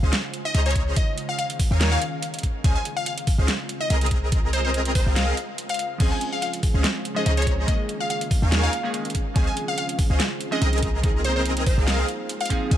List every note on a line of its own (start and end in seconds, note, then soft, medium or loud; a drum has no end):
0.00 0.12 C#2 loud
0.00 0.95 C#3 medium
0.00 0.93 G#3 medium
0.00 0.15 C#4 medium
0.00 0.93 F4 medium
0.00 0.15 G#4 medium
0.00 0.93 C5 medium
0.00 0.15 C5 medium
0.00 0.15 D#5 medium
0.00 0.15 F5 medium
0.13 snare loud
0.13 closed hi-hat medium
0.34 closed hi-hat medium
0.45 0.51 D#5 medium
0.55 0.94 C#2 loud
0.55 0.95 C#4 loud
0.55 0.95 G#4 medium
0.55 0.95 C5 medium
0.55 0.95 D#5 medium
0.55 0.62 D#5 medium
0.55 0.95 A#5 loud
0.55 closed hi-hat medium
0.66 0.78 C#5 loud
0.66 closed hi-hat soft
0.71 closed hi-hat medium
0.76 kick medium
0.76 closed hi-hat medium
0.96 2.42 D#3 medium
0.96 2.42 A#3 medium
0.96 2.42 C#4 medium
0.96 2.42 G#4 medium
0.96 1.10 D#5 medium
0.96 kick loud
0.96 closed hi-hat medium
1.18 closed hi-hat medium
1.29 1.35 F5 medium
1.39 1.46 F5 medium
1.39 closed hi-hat medium
1.50 closed hi-hat medium
1.59 kick loud
1.59 open hi-hat medium
1.71 1.97 D#2 loud
1.71 1.99 D#4 medium
1.71 1.99 A#4 medium
1.71 1.99 C#5 medium
1.71 1.99 F5 medium
1.71 1.99 G#5 medium
1.81 snare loud
1.81 closed hi-hat medium
1.92 2.48 F5 medium
2.02 closed hi-hat medium
2.22 closed hi-hat medium
2.34 closed hi-hat soft
2.39 closed hi-hat medium
2.43 4.10 C#3 medium
2.43 4.10 G#3 medium
2.43 4.10 C4 medium
2.43 5.96 F4 medium
2.43 kick medium
2.43 closed hi-hat medium
2.64 2.75 C#2 loud
2.64 2.77 C#4 medium
2.64 2.77 G#4 medium
2.64 2.77 C5 medium
2.64 2.77 D#5 medium
2.64 2.77 F5 loud
2.64 2.72 G#5 medium
2.64 kick loud
2.64 closed hi-hat medium
2.76 2.82 G#5 medium
2.85 closed hi-hat medium
2.97 3.03 F5 medium
3.06 3.14 F5 medium
3.06 closed hi-hat medium
3.18 closed hi-hat medium
3.27 kick loud
3.27 open hi-hat loud
3.38 3.48 C#2 loud
3.38 3.50 C#4 medium
3.38 3.50 G#4 medium
3.38 3.50 C5 medium
3.38 3.50 D#5 medium
3.38 3.50 F5 medium
3.48 snare loud
3.48 closed hi-hat medium
3.69 closed hi-hat medium
3.81 3.87 D#5 medium
3.90 5.04 C2 loud
3.90 5.04 C4 medium
3.90 5.04 G#4 medium
3.90 5.04 A#4 medium
3.90 3.98 D#5 medium
3.90 5.04 D#5 medium
3.90 5.04 A#5 loud
3.90 closed hi-hat medium
4.01 closed hi-hat soft
4.06 closed hi-hat medium
4.11 7.64 G#3 medium
4.11 7.64 C5 medium
4.11 kick medium
4.11 closed hi-hat medium
4.32 kick loud
4.32 closed hi-hat medium
4.53 4.61 C5 medium
4.53 closed hi-hat medium
4.65 4.71 C5 medium
4.74 closed hi-hat medium
4.85 closed hi-hat medium
4.95 5.09 C5 medium
4.95 kick loud
4.95 open hi-hat medium
5.07 5.33 C2 loud
5.07 5.35 C4 medium
5.07 5.35 G#4 medium
5.07 5.35 A#4 medium
5.07 5.35 D#5 medium
5.07 5.35 F5 medium
5.16 5.30 F5 medium
5.16 snare loud
5.16 closed hi-hat medium
5.37 closed hi-hat medium
5.58 closed hi-hat medium
5.69 6.05 F5 loud
5.69 closed hi-hat medium
5.74 closed hi-hat medium
5.79 closed hi-hat medium
5.98 6.11 C#2 loud
5.98 7.66 C#3 medium
5.98 7.02 F3 medium
5.98 7.02 G#3 medium
5.98 7.03 C4 medium
5.98 6.13 C#4 medium
5.98 7.03 C#4 medium
5.98 7.66 F4 medium
5.98 6.13 G#4 medium
5.98 7.04 G#4 medium
5.98 6.13 C5 medium
5.98 6.13 D#5 medium
5.98 6.13 F5 loud
5.98 6.07 G#5 medium
5.98 kick loud
5.98 closed hi-hat medium
5.98 crash medium
6.12 6.18 G#5 medium
6.21 closed hi-hat medium
6.33 6.39 F5 medium
6.42 6.49 F5 medium
6.42 closed hi-hat medium
6.53 closed hi-hat medium
6.63 kick loud
6.63 open hi-hat medium
6.74 6.84 C#2 loud
6.74 6.86 C#4 medium
6.74 6.86 G#4 medium
6.74 6.86 C5 medium
6.74 6.86 D#5 medium
6.74 6.86 F5 medium
6.84 snare loud
6.84 closed hi-hat medium
7.05 closed hi-hat medium
7.15 7.65 F3 medium
7.15 7.65 G#3 medium
7.15 7.66 C#4 medium
7.15 7.67 G#4 medium
7.15 7.66 C5 medium
7.15 7.23 D#5 medium
7.26 7.65 C#2 loud
7.26 7.67 C#4 medium
7.26 7.67 G#4 medium
7.26 7.67 C5 medium
7.26 7.67 D#5 medium
7.26 7.33 D#5 medium
7.26 7.67 A#5 loud
7.26 closed hi-hat medium
7.37 7.50 C#5 loud
7.37 closed hi-hat medium
7.42 closed hi-hat medium
7.47 kick medium
7.47 closed hi-hat medium
7.66 8.70 D#3 medium
7.66 9.13 D#3 medium
7.66 8.70 G#3 medium
7.66 9.13 A#3 medium
7.66 8.71 A#3 medium
7.66 9.13 C#4 medium
7.66 8.71 C#4 medium
7.66 9.13 G#4 medium
7.66 8.72 G#4 medium
7.66 7.82 D#5 medium
7.66 kick loud
7.66 closed hi-hat medium
7.89 closed hi-hat medium
8.01 8.07 F5 medium
8.10 8.17 F5 medium
8.10 closed hi-hat medium
8.21 closed hi-hat medium
8.31 kick loud
8.31 open hi-hat medium
8.42 8.69 D#2 loud
8.42 8.71 D#4 medium
8.42 8.71 A#4 medium
8.42 8.71 C#5 medium
8.42 8.71 F5 medium
8.42 8.71 G#5 medium
8.52 snare loud
8.52 closed hi-hat medium
8.63 9.19 F5 loud
8.73 closed hi-hat medium
8.83 9.13 D#3 medium
8.83 9.13 G#3 medium
8.83 9.14 A#3 medium
8.83 9.14 C#4 medium
8.83 9.14 G#4 loud
8.94 closed hi-hat medium
9.05 closed hi-hat soft
9.10 closed hi-hat medium
9.15 10.81 C#3 medium
9.15 12.77 G#3 medium
9.15 10.81 F4 medium
9.15 12.77 C5 medium
9.15 kick medium
9.15 closed hi-hat medium
9.34 9.47 C#2 loud
9.34 10.37 F3 medium
9.34 10.38 G#3 medium
9.34 10.38 C4 medium
9.34 9.49 C#4 medium
9.34 10.39 C#4 medium
9.34 9.49 G#4 medium
9.34 9.49 C5 medium
9.34 9.49 D#5 medium
9.34 9.49 F5 loud
9.34 9.43 G#5 medium
9.34 kick loud
9.34 closed hi-hat medium
9.38 10.39 G#4 medium
9.47 9.53 G#5 medium
9.57 closed hi-hat medium
9.68 9.74 F5 medium
9.78 9.85 F5 medium
9.78 closed hi-hat medium
9.89 closed hi-hat medium
9.99 kick loud
9.99 open hi-hat medium
10.10 10.20 C#2 loud
10.10 10.22 C#4 medium
10.10 10.22 G#4 medium
10.10 10.22 C5 medium
10.10 10.22 D#5 medium
10.10 10.22 F5 medium
10.20 snare loud
10.20 closed hi-hat medium
10.41 closed hi-hat medium
10.51 10.81 F3 medium
10.51 10.81 G#3 medium
10.51 10.82 C4 medium
10.51 10.82 C#4 medium
10.51 10.82 G#4 loud
10.51 10.58 D#5 medium
10.62 11.76 C2 loud
10.62 11.75 C4 loud
10.62 11.75 G#4 medium
10.62 11.75 A#4 medium
10.62 11.75 D#5 medium
10.62 10.69 D#5 medium
10.62 11.75 A#5 loud
10.62 closed hi-hat medium
10.73 closed hi-hat soft
10.78 closed hi-hat medium
10.82 12.77 F4 medium
10.82 kick medium
10.82 closed hi-hat medium
11.02 12.05 F3 medium
11.02 12.06 A#3 medium
11.02 12.06 C4 medium
11.02 12.07 D#4 medium
11.02 kick loud
11.02 closed hi-hat medium
11.06 12.07 G#4 medium
11.24 11.32 C5 medium
11.24 closed hi-hat medium
11.36 11.42 C5 medium
11.45 closed hi-hat medium
11.57 closed hi-hat medium
11.66 11.80 C5 medium
11.66 kick loud
11.66 open hi-hat medium
11.78 12.04 C2 loud
11.78 12.06 C4 medium
11.78 12.06 G#4 medium
11.78 12.06 A#4 medium
11.78 12.06 D#5 medium
11.78 12.06 F5 medium
11.87 12.01 F5 medium
11.87 snare loud
11.87 closed hi-hat medium
12.08 closed hi-hat medium
12.29 closed hi-hat medium
12.41 12.76 F5 loud
12.41 closed hi-hat soft
12.45 12.68 F3 loud
12.45 closed hi-hat medium
12.50 12.69 A#3 medium
12.50 12.69 C4 medium
12.50 12.69 D#4 medium
12.50 12.70 G#4 loud
12.50 kick medium
12.50 closed hi-hat medium
12.69 12.77 C#2 loud
12.69 12.77 C#3 medium
12.69 12.77 F3 medium
12.69 12.77 G#3 medium
12.69 12.77 C4 medium
12.69 12.77 C#4 loud
12.69 12.77 C#4 medium
12.69 12.77 G#4 medium
12.69 12.77 C5 medium
12.69 12.77 D#5 medium
12.69 12.77 F5 loud
12.69 12.77 G#5 medium
12.69 kick loud
12.69 closed hi-hat medium
12.73 12.77 G#4 medium